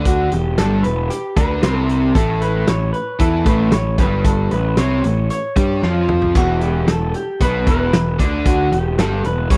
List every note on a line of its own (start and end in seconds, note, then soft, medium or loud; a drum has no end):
0.00 0.28 D2 medium
0.00 0.31 D3 medium
0.00 0.32 D4 medium
0.05 0.32 F#4 medium
0.05 kick medium
0.05 closed hi-hat medium
0.31 0.57 E1 medium
0.31 0.53 E2 medium
0.31 0.59 G4 medium
0.31 closed hi-hat medium
0.58 0.83 G1 medium
0.58 0.84 G2 medium
0.58 0.84 G3 loud
0.58 0.83 A4 medium
0.58 snare medium
0.58 closed hi-hat medium
0.83 1.09 E1 medium
0.83 1.06 E2 medium
0.83 1.11 B4 medium
0.83 closed hi-hat medium
1.10 1.35 G4 medium
1.10 closed hi-hat medium
1.36 1.61 D2 medium
1.36 1.62 D3 medium
1.36 1.63 D4 medium
1.36 1.85 B4 medium
1.36 kick loud
1.36 closed hi-hat medium
1.62 2.12 C2 medium
1.62 2.14 C3 medium
1.62 2.15 C4 medium
1.62 snare loud
1.62 closed hi-hat medium
1.89 closed hi-hat medium
2.15 2.64 A1 medium
2.15 2.67 A2 medium
2.15 2.68 A3 medium
2.15 2.42 A4 medium
2.15 kick medium
2.15 closed hi-hat medium
2.41 2.69 B4 medium
2.41 closed hi-hat medium
2.67 2.92 A1 medium
2.67 2.89 A2 medium
2.67 2.92 C#5 medium
2.67 snare medium
2.67 closed hi-hat medium
2.93 3.21 B4 medium
2.93 closed hi-hat medium
3.19 3.44 E2 medium
3.19 3.45 E3 medium
3.19 3.46 E4 medium
3.19 3.47 A4 medium
3.19 kick medium
3.19 closed hi-hat medium
3.46 3.71 A1 medium
3.46 3.71 A2 medium
3.46 3.72 A3 medium
3.46 3.73 B4 medium
3.46 kick loud
3.46 closed hi-hat medium
3.72 3.97 A1 medium
3.72 3.93 A2 medium
3.72 4.00 C#5 medium
3.72 snare loud
3.72 closed hi-hat medium
3.98 4.48 G1 medium
3.98 4.51 G2 medium
3.98 4.51 G3 medium
3.98 4.27 B4 medium
3.98 kick loud
3.98 snare soft
3.98 closed hi-hat medium
4.25 4.50 A4 medium
4.25 kick medium
4.25 closed hi-hat medium
4.51 4.76 A1 medium
4.51 4.73 A2 medium
4.51 4.78 B4 medium
4.51 closed hi-hat medium
4.77 5.03 C2 medium
4.77 5.03 C3 medium
4.77 5.04 C4 medium
4.77 5.29 C#5 medium
4.77 snare medium
4.77 closed hi-hat medium
5.04 5.29 A1 medium
5.04 5.25 A2 medium
5.04 closed hi-hat medium
5.30 6.05 C#5 medium
5.30 closed hi-hat medium
5.56 5.81 G2 medium
5.56 5.82 G3 medium
5.56 5.83 G4 medium
5.56 kick loud
5.56 closed hi-hat medium
5.82 6.32 F2 medium
5.82 6.34 F3 medium
5.82 6.35 F4 medium
5.82 snare soft
6.09 mid tom medium
6.22 floor tom medium
6.35 6.84 E1 medium
6.35 6.86 E2 medium
6.35 6.87 E3 medium
6.35 6.62 F#4 medium
6.35 kick medium
6.35 closed hi-hat medium
6.35 splash medium
6.61 6.89 G4 medium
6.61 closed hi-hat medium
6.88 7.13 E1 medium
6.88 7.09 E2 medium
6.88 7.15 A4 medium
6.88 snare medium
6.88 closed hi-hat medium
7.14 7.42 G4 medium
7.14 closed hi-hat medium
7.41 7.65 B1 medium
7.41 7.66 B2 medium
7.41 7.67 B3 medium
7.41 7.67 B4 loud
7.41 kick medium
7.41 closed hi-hat medium
7.67 7.91 E1 medium
7.67 7.93 E2 medium
7.67 7.93 E3 medium
7.67 8.17 B4 medium
7.67 kick loud
7.67 closed hi-hat medium
7.93 8.18 E1 medium
7.93 8.14 E2 medium
7.93 snare loud
7.93 closed hi-hat medium
8.19 8.68 D2 medium
8.19 8.71 D3 medium
8.19 8.71 D4 medium
8.19 kick medium
8.19 closed hi-hat medium
8.46 8.72 F#4 medium
8.46 kick medium
8.46 closed hi-hat medium
8.72 8.96 E1 medium
8.72 8.93 E2 medium
8.72 8.99 G4 medium
8.72 closed hi-hat medium
8.98 9.23 G1 medium
8.98 9.24 G2 medium
8.98 9.24 G3 medium
8.98 9.26 A4 medium
8.98 snare loud
8.98 closed hi-hat medium
9.24 9.49 E1 medium
9.24 9.45 E2 medium
9.24 9.51 B4 medium
9.24 closed hi-hat medium
9.50 9.57 G1 medium
9.50 9.57 G2 medium
9.50 9.57 G3 medium
9.50 9.57 C#5 loud
9.50 kick medium
9.50 closed hi-hat medium